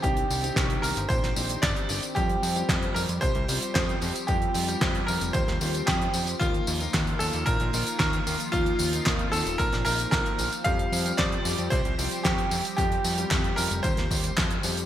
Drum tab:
HH |xxoxxxoxxxoxxxox|xxoxxxoxxxoxxxox|xxoxxxoxxxoxxxox|xxoxxxoxxxoxxxox|
TB |x-xxx-xxx-xxx-xx|x-xxx-xxx-xxx-xx|x-xx--xxx-xxx-xx|x-xxx-xxx-xxx-xx|
CP |----x-------x---|----x-------x---|----x-------x---|----x-------x---|
SD |----o----o--o---|----o-------o---|----o----o--o---|----o-------o---|
BD |o---o---o---o---|o---o---o---o---|o---o---o---o---|o---o---o---o---|

HH |xxoxxxoxxxoxxxox|xxoxxxoxxxoxxxox|xxoxxxoxxxoxxxox|
TB |x-xx--xxx-xxx-xx|x-xxx-xxx-xxx-xx|x-xxx-xxx-xxx-xx|
CP |----x-------x---|----x-------x---|----x-------x---|
SD |----o----o--o---|----o-------o---|----o----o--o---|
BD |o---o---o---o---|o---o---o---o---|o---o---o-o-o---|